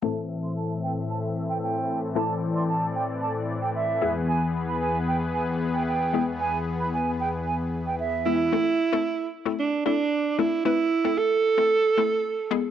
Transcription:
0.02 3.97 A2 medium
0.02 8.49 E3 medium
0.02 2.11 A3 medium
0.02 2.11 C4 medium
0.02 3.97 C4 medium
0.02 2.12 E4 medium
0.02 3.97 A4 medium
0.02 2.12 A4 medium
0.02 2.13 E5 medium
0.02 0.21 A5 medium
0.43 0.52 C6 medium
0.56 0.74 A5 medium
0.83 0.92 G5 medium
1.09 1.18 A5 medium
1.49 1.58 G5 medium
1.63 2.00 G5 medium
2.15 3.98 A3 medium
2.15 3.98 C4 medium
2.15 3.98 E4 medium
2.15 3.98 A4 medium
2.15 3.99 D5 medium
2.15 2.33 A5 medium
2.55 2.64 C6 medium
2.69 2.86 A5 medium
2.95 3.04 G5 medium
3.22 3.31 A5 medium
3.62 3.70 G5 medium
3.75 4.12 E5 medium
4.01 8.49 E2 medium
4.01 6.10 G#3 medium
4.01 6.10 B3 medium
4.01 8.49 B3 medium
4.01 6.10 E4 medium
4.01 8.49 G#4 medium
4.01 6.10 G#4 medium
4.01 8.49 B4 medium
4.28 4.46 G#5 medium
4.68 4.77 B5 medium
4.81 4.99 G#5 medium
5.08 5.17 G5 medium
5.34 5.43 G#5 medium
5.74 5.83 G5 medium
5.87 6.25 G5 medium
6.13 8.22 G#3 medium
6.13 8.22 B3 medium
6.13 8.22 E4 medium
6.13 8.22 G#4 medium
6.40 6.58 G#5 medium
6.80 6.89 B5 medium
6.94 7.11 G#5 medium
7.20 7.29 G5 medium
7.47 7.55 G#5 medium
7.87 7.95 G5 medium
8.00 8.37 E5 medium
8.26 8.53 G#3 soft
8.26 8.53 B3 soft
8.26 9.28 E4 loud
8.26 8.51 E4 soft
8.26 8.53 G#4 medium
8.52 8.84 A3 medium
8.52 8.84 C4 medium
8.52 8.84 E4 medium
8.52 8.84 A4 medium
8.93 9.35 A3 medium
8.93 9.35 C4 medium
8.93 9.35 E4 medium
8.93 9.35 A4 loud
9.45 9.77 A3 medium
9.45 9.77 C4 medium
9.45 9.77 E4 medium
9.45 9.77 A4 medium
9.59 9.84 D4 medium
9.85 10.28 A3 medium
9.85 10.28 C4 medium
9.85 10.40 D4 medium
9.85 10.28 E4 medium
9.85 10.28 A4 medium
10.39 10.60 A3 medium
10.39 10.60 C4 medium
10.39 10.65 E4 medium
10.39 10.60 E4 medium
10.39 10.60 A4 medium
10.65 10.97 A3 medium
10.65 10.97 C4 medium
10.65 11.20 E4 medium
10.65 10.97 E4 medium
10.65 10.97 B4 medium
11.04 11.47 A3 medium
11.04 11.47 C4 medium
11.04 11.47 E4 medium
11.04 11.47 A4 medium
11.18 12.51 A4 loud
11.58 11.89 A3 medium
11.58 11.89 C4 medium
11.58 11.89 E4 medium
11.58 11.90 A4 medium
11.98 12.40 A3 medium
11.98 12.40 C4 medium
11.98 12.40 E4 medium
11.98 12.40 A4 medium
12.51 12.71 G#3 medium
12.51 12.71 B3 medium
12.51 12.71 E4 medium
12.51 12.71 G#4 loud

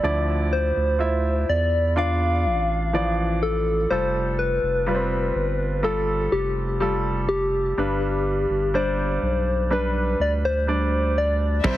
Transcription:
0.00 0.72 D2 medium
0.00 1.45 D3 medium
0.00 0.95 F3 medium
0.00 0.95 E4 medium
0.00 0.54 D5 medium
0.04 0.96 D5 medium
0.53 1.51 C5 medium
0.77 1.45 D2 medium
0.99 1.92 E4 medium
0.99 1.91 F4 medium
0.99 1.92 E5 medium
1.49 2.47 E2 medium
1.49 2.00 D5 medium
1.96 2.89 D4 medium
1.96 2.88 F4 medium
1.96 2.89 D5 medium
1.96 3.44 F5 loud
2.45 3.87 A1 medium
2.93 3.86 E3 medium
2.93 3.85 F3 medium
2.93 3.86 D5 medium
3.43 3.90 A4 medium
3.90 4.59 F1 medium
3.90 4.82 G3 medium
3.90 4.83 F4 medium
3.90 4.83 A4 medium
3.90 4.40 C5 loud
4.39 5.86 B4 medium
4.63 5.31 F1 medium
4.86 5.79 G3 medium
4.86 5.79 F4 soft
4.86 4.94 B4 medium
4.95 5.83 C4 medium
5.35 6.28 G1 medium
5.83 6.75 G3 medium
5.83 6.76 F4 medium
5.83 6.34 A4 medium
5.83 6.76 A4 medium
6.32 7.73 F1 loud
6.32 6.80 G4 medium
6.80 7.72 G3 medium
6.80 7.73 F4 soft
6.80 6.94 G4 medium
6.80 7.73 A4 medium
7.29 8.76 G4 medium
7.77 8.46 G1 medium
7.77 9.19 G2 medium
7.77 8.69 G3 medium
7.77 8.70 D4 medium
7.77 8.70 B4 medium
8.50 9.19 G1 medium
8.74 9.66 G3 medium
8.74 9.66 D4 soft
8.74 9.71 C5 medium
8.74 9.67 D5 medium
9.22 10.15 B1 medium
9.70 10.63 G3 medium
9.70 10.63 D4 medium
9.70 10.63 B4 medium
9.70 10.17 B4 medium
10.19 11.61 D2 medium
10.19 10.32 D5 medium
10.45 11.19 C5 medium
10.67 11.59 G3 soft
10.67 11.60 D4 medium
10.67 11.60 D5 medium
11.18 11.68 D5 medium
11.64 11.77 C2 medium
11.64 11.77 C3 medium
11.64 11.77 G3 medium
11.64 11.77 C4 medium
11.64 11.77 E4 medium
11.64 11.77 G4 medium
11.64 11.77 C5 medium
11.64 11.77 C5 loud
11.64 11.77 E5 medium
11.64 kick loud
11.64 crash medium

